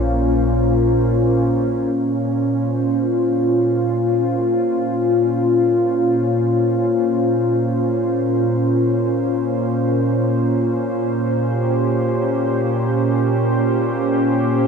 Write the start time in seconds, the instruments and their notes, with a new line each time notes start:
Already playing: analog synth bass A#1, analog synth pad A#2 A#3 C#4 F4 C5
1.95 analog synth pad A#2
2.01 analog synth pad A#3
2.06 analog synth pad C#4
2.18 analog synth pad F4
2.56 analog synth pad C5
11.43 analog synth pad G4